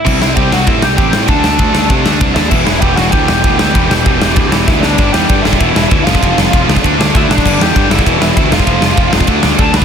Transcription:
<<
  \new Staff \with { instrumentName = "Lead electric guitar" } { \time 4/4 \key e \minor \tempo 4 = 195 <e' e''>4 <g' g''>8 <fis' fis''>8 <e' e''>8 <g' g''>8 <g' g''>4 | <a' a''>8 <a' a''>4. r4. <e' e''>8~ | <e' e''>4 <g' g''>8 <fis' fis''>8 <g' g''>4. <g' g''>8~ | <g' g''>2. <e' e''>8 <d' d''>8~ |
<d' d''>8 <g' g''>4 <e' e''>4. <e' e''>8 <f' f''>8~ | <f' f''>4. r4. <e' e''>8 <d' d''>8~ | <d' d''>8 <g' g''>4 <e' e''>4. <e' e''>8 <f' f''>8~ | <f' f''>4. r4. <a' a''>8 <b' b''>8 | }
  \new Staff \with { instrumentName = "Distorted electric guitar" } { \clef bass \time 4/4 \key e \minor <c g c'>8 <c g c'>8 <c g c'>8 <c g c'>8 <c g c'>8 <c g c'>8 <c g c'>8 <c g c'>8 | <d a d'>8 <d a d'>8 <d a d'>8 <d a d'>8 <d a d'>8 <d a d'>8 <d a d'>8 <d a d'>8 | <e, b, e>8 <e, b, e>8 <e, b, e>8 <e, b, e>8 <e, b, e>8 <e, b, e>8 <e, b, e>8 <e, b, e>8 | <e, b, e>8 <e, b, e>8 <e, b, e>8 <e, b, e>8 <e, b, e>8 <e, b, e>8 <e, b, e>8 <e, b, e>8 |
<g, d g>8 <g, d g>8 <g, d g>8 <g, d g>8 <e, b, e>8 <e, b, e>8 <e, b, e>8 <f, c f>8 | <f, c f>8 <f, c f>8 <f, c f>8 <f, c f>8 <d a d'>8 <d a d'>8 <d a d'>8 <d a d'>8 | <g, d g>8 <g, d g>8 <g, d g>8 <g, d g>8 <e, b, e>8 <e, b, e>8 <e, b, e>8 <f, c f>8 | <f, c f>8 <f, c f>8 <f, c f>8 <f, c f>8 <d a d'>8 <d a d'>8 <d a d'>8 <d a d'>8 | }
  \new Staff \with { instrumentName = "Distorted electric guitar" } { \clef bass \time 4/4 \key e \minor <c g c'>8 <c g c'>8 <c g c'>8 <c g c'>8 <c g c'>8 <c g c'>8 <c g c'>8 <c g c'>8 | <d a d'>8 <d a d'>8 <d a d'>8 <d a d'>8 <d a d'>8 <d a d'>8 <d a d'>8 <d a d'>8 | <e, b, e>8 <e, b, e>8 <e, b, e>8 <e, b, e>8 <e, b, e>8 <e, b, e>8 <e, b, e>8 <e, b, e>8 | <e, b, e>8 <e, b, e>8 <e, b, e>8 <e, b, e>8 <e, b, e>8 <e, b, e>8 <e, b, e>8 <e, b, e>8 |
<g, d g>8 <g, d g>8 <g, d g>8 <g, d g>8 <e, b, e>8 <e, b, e>8 <e, b, e>8 <f, c f>8 | <f, c f>8 <f, c f>8 <f, c f>8 <f, c f>8 <d a d'>8 <d a d'>8 <d a d'>8 <d a d'>8 | <g, d g>8 <g, d g>8 <g, d g>8 <g, d g>8 <e, b, e>8 <e, b, e>8 <e, b, e>8 <f, c f>8 | <f, c f>8 <f, c f>8 <f, c f>8 <f, c f>8 <d a d'>8 <d a d'>8 <d a d'>8 <d a d'>8 | }
  \new Staff \with { instrumentName = "Distorted electric guitar" } { \clef bass \time 4/4 \key e \minor <c g c'>4. <c g c'>2~ <c g c'>8 | <d a d'>4. <d a d'>2~ <d a d'>8 | <e, b, e>4. <e, b, e>2~ <e, b, e>8 | <e, b, e>4. <e, b, e>2~ <e, b, e>8 |
<g, d g>2 <e, b, e>4. <f, c f>8~ | <f, c f>2 <d a d'>2 | <g, d g>2 <e, b, e>4. <f, c f>8~ | <f, c f>2 <d a d'>2 | }
  \new Staff \with { instrumentName = "Picked electric bass" } { \clef bass \time 4/4 \key e \minor c,8 c,8 c,8 c,8 a,8 c,8 a,,8 a,8 | d,8 d,8 d,8 d,8 c8 d,8 c,8 ees,8 | e,,8 e,,8 e,,8 e,,8 d,8 e,,8 d,8 d,8 | e,,8 e,,8 e,,8 e,,8 d,8 e,,8 d,8 d,8 |
g,,8 e,8 g,8 g,,8 e,,8 e,,8 d,8 f,,8 | f,,8 f,,8 f,,8 cis,8 d,8 d,8 d,8 a,,8 | g,,8 e,8 g,8 g,,8 e,,8 e,,8 d,8 f,,8 | f,,8 f,,8 f,,8 f,,8 d,8 d,8 d,8 d,8 | }
  \new DrumStaff \with { instrumentName = "Drums" } \drummode { \time 4/4 <cymc bd>8 sn8 <bd cymr>8 sn8 <bd cymr>8 sn8 <bd cymr>8 sn8 | <bd cymr>8 sn8 <bd cymr>8 sn8 <bd cymr>8 sn8 <bd cymr>8 sn8 | <cymc bd>8 sn8 <bd cymr>8 sn8 <bd cymr>8 sn8 <bd cymr>8 sn8 | <bd cymr>8 sn8 <bd cymr>8 sn8 <bd cymr>8 sn8 <bd sn>8 sn8 |
<bd cymr>8 sn8 <bd cymr>8 sn16 bd16 <bd cymr>8 sn8 <bd cymr>8 sn16 bd16 | <bd cymr>8 sn8 <bd cymr>8 sn16 bd16 <bd cymr>8 sn8 <bd cymr>8 sn16 bd16 | <cymc bd>8 sn8 <bd cymr>8 sn16 bd16 <bd cymr>8 sn8 <bd cymr>8 sn16 bd16 | <bd cymr>8 sn8 <bd cymr>8 sn16 bd16 <bd cymr>8 sn8 <bd cymr>8 sn16 bd16 | }
>>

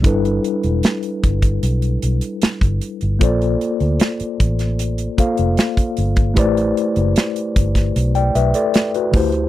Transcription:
<<
  \new Staff \with { instrumentName = "Tine electric piano" } { \time 4/4 \key g \major \tempo 4 = 76 << { r1 | r1 | r2 r16 <d'' g''>16 <b' e''>16 <a' d''>8 <fis' b'>8 r16 | } \\ { <g d' e' a' b'>1 | <bes f' a' c'' d''>2~ <bes f' a' c'' d''>8 <bes f' a' c'' f''>4. | <a e' g' b' c'' d''>2.~ <a e' g' b' c'' d''>8 <d a e' g' c''>8 | } >> }
  \new Staff \with { instrumentName = "Fingered electric bass" } { \clef bass \time 4/4 \key g \major g,,8 r16 e,,16 r8 g,,8 b,,8 b,,16 r8 g,,16 r16 g,,16 | bes,,8 r16 d,16 r8 a,,4 r16 f,,16 r8 g,,8 | a,,8 r16 fis,,16 r8 g,,8 b,,8 b,,16 r8. d,8 | }
  \new DrumStaff \with { instrumentName = "Drums" } \drummode { \time 4/4 <hh bd>16 hh16 hh16 hh16 <hh sn>16 hh16 <hh bd>16 <hh bd>16 hh16 hh16 hh16 hh16 <hh sn>16 <hh bd>16 hh16 hh16 | <hh bd>16 hh16 hh16 hh16 <hh sn>16 hh16 <hh bd>16 <hh sn>16 hh16 hh16 <hh bd>16 hh16 <hh sn>16 <hh bd>16 hh16 <hh bd>16 | <hh bd>16 hh16 hh16 hh16 <hh sn>16 hh16 <hh bd>16 <hh bd sn>16 hh16 hh16 hh16 hh16 <hh sn>16 hh16 <hho bd>16 hh16 | }
>>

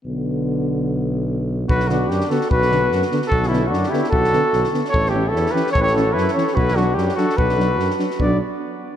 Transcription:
<<
  \new Staff \with { instrumentName = "Cornet" } { \time 2/4 \key b \minor \tempo 4 = 148 r2 | r2 | b'8 fis'8 g'8 a'8 | b'4. r8 |
a'8 e'8 fis'8 g'8 | a'4. r8 | cis''8 g'8 a'8 b'8 | cis''32 b'32 cis''16 a'8 b'8 cis''8 |
b'8 fis'8 g'8 a'8 | b'4. r8 | d''8 r4. | }
  \new Staff \with { instrumentName = "Flugelhorn" } { \time 2/4 \key b \minor r2 | r2 | fis'8 d'8 d'8 fis'8 | fis'4. r8 |
fis'8 cis'8 d'8 e'8 | fis'4. r8 | a'8 e'8 e'8 g'8 | a'32 g'32 a'16 fis'8 e'8 a'8 |
fis'8 d'8 d'8 fis'8 | fis'4. r8 | b8 r4. | }
  \new Staff \with { instrumentName = "Euphonium" } { \time 2/4 \key b \minor b2~ | b2 | r8 b8 r8 b8 | r8 b8 r8 b8 |
r8 b8 r8 b8 | r8 b8 r8 b8 | r8 cis'8 r8 cis'8 | r8 cis'8 r8 cis'8 |
r8 d'8 r8 d'8 | r8 d'8 r8 d'8 | d'8 r4. | }
  \new Staff \with { instrumentName = "Trombone" } { \clef bass \time 2/4 \key b \minor d2~ | d2 | r8 d8 r8 d8 | r8 d8 r8 d8 |
r8 d8 r8 d8 | r8 d8 r8 d8 | r8 e8 r8 e8 | r8 e8 r8 e8 |
r8 fis8 r8 fis8 | r8 fis8 r8 fis8 | fis8 r4. | }
  \new Staff \with { instrumentName = "Tuba" } { \clef bass \time 2/4 \key b \minor b,,2~ | b,,2 | b,,4 fis,8 r8 | b,,4 fis,8 r8 |
b,,4 fis,8 r8 | b,,4 b,,8 r8 | a,,4 e,8 r8 | a,,4 fis,8 r8 |
b,,4 fis,8 r8 | b,,4 fis,8 r8 | b,,8 r4. | }
  \new DrumStaff \with { instrumentName = "Drums" } \drummode { \time 2/4 r4 r4 | r4 r4 | bd16 sn16 sn8 sn16 sn16 sn16 sn16 | bd16 sn16 sn8 sn16 sn16 sn16 sn16 |
bd16 sn16 sn8 sn16 sn16 sn16 sn16 | bd16 sn16 sn8 sn16 sn16 sn16 sn16 | bd16 sn8. sn16 sn16 sn16 sn16 | bd16 sn16 sn8 sn16 sn16 sn16 sn16 |
bd16 sn16 sn8 sn16 sn16 sn16 sn16 | bd16 sn16 sn8 sn16 sn16 sn16 sn16 | bd4 r4 | }
>>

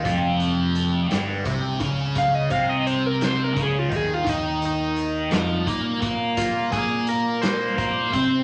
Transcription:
<<
  \new Staff \with { instrumentName = "Analog synth lead" } { \time 6/8 \key f \minor \tempo 4. = 57 f'4 r2 | f''16 ees''16 f''16 ees''16 c''16 bes'16 c''16 bes'16 aes'16 f'16 aes'16 f'16 | ees'8 ees'2 r8 | f'8 aes'8 bes'8 c''4. | }
  \new Staff \with { instrumentName = "Distorted electric guitar" } { \time 6/8 \key f \minor <f, f>4. <g, g>8 <c c'>8 <des des'>8~ | <des des'>8 <c c'>4. <des des'>8 <ees ees'>8 | <ees ees'>4. <f f'>8 <bes bes'>8 <bes bes'>8~ | <bes bes'>8 <bes bes'>4. <bes bes'>8 <c' c''>8 | }
  \new Staff \with { instrumentName = "Fingered electric bass" } { \clef bass \time 6/8 \key f \minor f,,4. g,,8 c,8 des,8~ | des,8 c,4. des,8 ees,8 | ees,4. f,8 bes,8 bes,8~ | bes,8 bes,4. bes,8 c8 | }
  \new DrumStaff \with { instrumentName = "Drums" } \drummode { \time 6/8 <hh bd>8 hh8 hh8 <hh sn>8 <hh bd>8 <hh bd>8 | <hh bd>8 <hh bd>8 hh8 <hh sn>8 <hh bd>8 <hh bd>8 | <hh bd>8 hh8 hh8 <hh sn>8 <hh bd>8 <hh bd>8 | <hh bd>8 <hh bd>8 hh8 <hh sn>8 <hh bd>8 <hh bd>8 | }
>>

